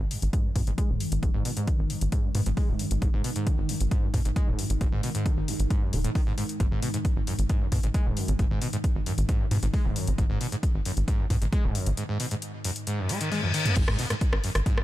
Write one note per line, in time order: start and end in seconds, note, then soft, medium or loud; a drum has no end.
0.00 13.81 G#2 medium
0.00 0.13 D#3 medium
0.00 13.81 D#3 medium
0.11 0.17 F#2 medium
0.11 open hi-hat loud
0.22 0.29 G#1 medium
0.22 closed hi-hat medium
0.33 0.46 G#2 medium
0.33 kick loud
0.33 closed hi-hat medium
0.45 0.51 F#2 medium
0.56 0.63 G#2 medium
0.56 0.62 B2 medium
0.56 kick medium
0.56 open hi-hat loud
0.67 0.74 G#1 medium
0.67 0.71 G#2 loud
0.67 closed hi-hat medium
0.78 0.91 G#3 medium
0.78 kick loud
0.78 closed hi-hat medium
0.90 0.96 D#1 medium
0.90 1.02 G#2 medium
1.00 1.07 F#2 medium
1.00 open hi-hat loud
1.12 1.19 G#1 medium
1.12 closed hi-hat medium
1.23 1.30 G#1 loud
1.23 1.29 G#2 medium
1.23 kick loud
1.23 closed hi-hat medium
1.34 1.41 G#1 medium
1.34 1.43 G#2 loud
1.45 1.52 B2 medium
1.45 open hi-hat loud
1.57 1.69 G#2 loud
1.57 closed hi-hat medium
1.67 1.91 D#3 medium
1.67 kick loud
1.67 closed hi-hat medium
1.79 1.86 G#1 loud
1.90 1.96 F#2 medium
1.90 open hi-hat loud
2.01 2.08 G#1 medium
2.01 closed hi-hat medium
2.12 2.26 G#2 medium
2.12 kick loud
2.12 closed hi-hat medium
2.24 2.30 F#2 medium
2.35 2.42 G#2 medium
2.35 2.41 B2 medium
2.35 open hi-hat loud
2.46 2.53 G#1 medium
2.46 2.50 G#2 loud
2.46 closed hi-hat medium
2.57 2.70 G#3 medium
2.57 kick loud
2.57 open hi-hat medium
2.69 2.75 D#1 medium
2.69 2.81 G#2 medium
2.79 2.86 F#2 medium
2.79 open hi-hat loud
2.91 2.98 G#1 medium
2.91 closed hi-hat medium
3.02 3.09 G#1 loud
3.02 3.08 G#2 medium
3.02 kick loud
3.02 closed hi-hat medium
3.14 3.20 G#1 medium
3.14 3.22 G#2 loud
3.24 3.31 B2 medium
3.24 open hi-hat loud
3.36 3.48 G#2 loud
3.36 closed hi-hat medium
3.47 3.71 D#3 medium
3.47 kick loud
3.47 closed hi-hat medium
3.58 3.65 G#1 loud
3.69 3.75 F#2 medium
3.69 open hi-hat loud
3.81 3.87 G#1 medium
3.81 closed hi-hat medium
3.91 4.05 G#2 medium
3.91 kick loud
3.91 closed hi-hat medium
4.03 4.09 F#2 medium
4.14 4.21 G#2 medium
4.14 4.20 B2 medium
4.14 kick medium
4.14 open hi-hat loud
4.25 4.32 G#1 medium
4.25 4.29 G#2 loud
4.25 closed hi-hat medium
4.36 4.49 G#3 medium
4.36 kick loud
4.36 closed hi-hat medium
4.48 4.54 D#1 medium
4.48 4.60 G#2 medium
4.59 4.65 F#2 medium
4.59 open hi-hat loud
4.70 4.77 G#1 medium
4.70 closed hi-hat medium
4.81 4.88 G#1 loud
4.81 4.87 G#2 medium
4.81 kick loud
4.81 closed hi-hat medium
4.92 4.99 G#1 medium
4.92 5.01 G#2 loud
5.03 5.10 B2 medium
5.03 open hi-hat loud
5.15 5.27 G#2 loud
5.15 closed hi-hat medium
5.26 5.50 D#3 medium
5.26 kick loud
5.26 closed hi-hat medium
5.37 5.44 G#1 loud
5.48 5.54 F#2 medium
5.48 open hi-hat loud
5.59 5.66 G#1 medium
5.59 closed hi-hat medium
5.70 5.84 G#2 medium
5.70 kick loud
5.70 closed hi-hat medium
5.82 5.94 F#2 medium
5.93 6.07 D#1 medium
5.93 5.99 D#3 loud
5.93 open hi-hat loud
6.04 6.10 A2 loud
6.04 closed hi-hat medium
6.15 6.22 D#3 medium
6.15 kick loud
6.15 open hi-hat medium
6.27 6.33 G#2 loud
6.38 6.44 G#2 medium
6.38 open hi-hat loud
6.49 closed hi-hat medium
6.60 6.67 G#1 loud
6.60 6.66 G#2 medium
6.60 kick loud
6.60 closed hi-hat medium
6.71 6.78 G#1 medium
6.71 6.81 G#2 loud
6.82 6.89 B2 medium
6.82 open hi-hat loud
6.94 6.98 G#2 loud
6.94 closed hi-hat medium
7.05 kick loud
7.05 closed hi-hat medium
7.16 7.23 G#1 loud
7.27 7.34 F#2 medium
7.27 open hi-hat loud
7.39 7.45 G#1 medium
7.39 closed hi-hat medium
7.49 7.63 G#2 medium
7.49 kick loud
7.49 closed hi-hat medium
7.61 7.67 F#2 medium
7.72 7.79 G#2 medium
7.72 7.78 B2 medium
7.72 kick medium
7.72 open hi-hat loud
7.83 7.90 G#1 medium
7.83 7.87 G#2 loud
7.83 closed hi-hat medium
7.94 8.08 G#3 medium
7.94 kick loud
7.94 closed hi-hat medium
8.06 8.13 D#1 medium
8.06 8.18 G#2 medium
8.17 8.30 F#2 medium
8.17 open hi-hat loud
8.28 8.35 G#1 loud
8.28 8.32 D#3 medium
8.28 closed hi-hat medium
8.39 8.46 G#1 loud
8.39 8.46 G#2 medium
8.39 kick loud
8.39 closed hi-hat medium
8.51 8.57 G#1 medium
8.51 8.60 G#2 loud
8.62 8.68 B2 medium
8.62 open hi-hat loud
8.73 8.77 G#2 loud
8.73 closed hi-hat medium
8.84 kick loud
8.84 closed hi-hat medium
8.95 9.02 G#1 loud
9.06 9.13 F#2 medium
9.06 open hi-hat loud
9.18 9.25 G#1 medium
9.18 closed hi-hat medium
9.29 9.42 G#2 medium
9.29 kick loud
9.29 closed hi-hat medium
9.40 9.46 F#2 medium
9.51 9.58 G#2 medium
9.51 9.57 B2 medium
9.51 open hi-hat loud
9.63 9.69 G#1 medium
9.63 9.66 G#2 loud
9.63 closed hi-hat medium
9.74 9.86 G#3 medium
9.74 kick loud
9.74 open hi-hat medium
9.85 9.92 D#1 medium
9.85 9.97 G#2 medium
9.96 10.09 F#2 medium
9.96 open hi-hat loud
10.07 10.14 G#1 medium
10.07 10.11 D#3 medium
10.07 closed hi-hat medium
10.18 10.25 G#1 loud
10.18 10.25 G#2 medium
10.18 kick loud
10.18 closed hi-hat medium
10.30 10.37 G#1 medium
10.30 10.39 G#2 loud
10.41 10.47 B2 medium
10.41 open hi-hat loud
10.52 10.56 G#2 loud
10.52 closed hi-hat medium
10.63 kick loud
10.63 closed hi-hat medium
10.75 10.81 G#1 loud
10.85 10.92 F#2 medium
10.85 open hi-hat loud
10.97 11.04 G#1 medium
10.97 closed hi-hat medium
11.08 11.21 G#2 medium
11.08 kick loud
11.08 closed hi-hat medium
11.19 11.25 F#2 medium
11.30 11.37 G#2 medium
11.30 11.37 B2 medium
11.30 kick medium
11.30 open hi-hat loud
11.42 11.49 G#1 medium
11.42 11.45 G#2 loud
11.42 closed hi-hat medium
11.53 11.66 G#3 medium
11.53 kick loud
11.53 closed hi-hat medium
11.64 11.71 D#1 medium
11.64 11.77 G#2 medium
11.75 11.88 F#2 medium
11.75 open hi-hat loud
11.86 11.93 G#1 loud
11.86 11.90 D#3 medium
11.86 closed hi-hat medium
11.97 12.04 G#2 medium
11.97 closed hi-hat medium
12.09 12.18 G#2 loud
12.20 12.26 B2 medium
12.20 open hi-hat loud
12.31 12.35 G#2 loud
12.31 closed hi-hat medium
12.42 closed hi-hat medium
12.64 12.71 F#2 medium
12.64 open hi-hat loud
12.76 closed hi-hat medium
12.87 13.00 G#2 medium
12.87 closed hi-hat medium
12.87 reverse cymbal medium
12.99 13.11 F#2 medium
13.09 13.19 G#3 medium
13.09 open hi-hat loud
13.21 13.30 D#3 medium
13.21 closed hi-hat medium
13.32 13.41 G#3 medium
13.32 open hi-hat medium
13.32 high tom medium
13.43 13.52 F#2 loud
13.43 high tom medium
13.54 13.67 D#3 medium
13.54 open hi-hat loud
13.66 13.75 B3 medium
13.66 closed hi-hat medium
13.66 mid tom medium
13.76 13.84 G#1 loud
13.76 13.83 G#2 medium
13.76 kick loud
13.76 closed hi-hat medium
13.76 crash loud
13.88 13.95 G#1 medium
13.88 13.97 G#2 loud
13.88 cross-stick medium
13.99 14.05 B2 medium
13.99 open hi-hat loud
14.10 14.14 G#2 loud
14.10 cross-stick medium
14.10 closed hi-hat medium
14.21 kick loud
14.21 closed hi-hat medium
14.33 14.40 G#1 loud
14.33 cross-stick medium
14.44 14.50 F#2 medium
14.44 open hi-hat loud
14.55 14.62 G#1 medium
14.55 cross-stick medium
14.55 closed hi-hat medium
14.66 14.79 G#2 medium
14.66 kick loud
14.66 closed hi-hat medium
14.78 14.84 F#2 medium
14.78 cross-stick medium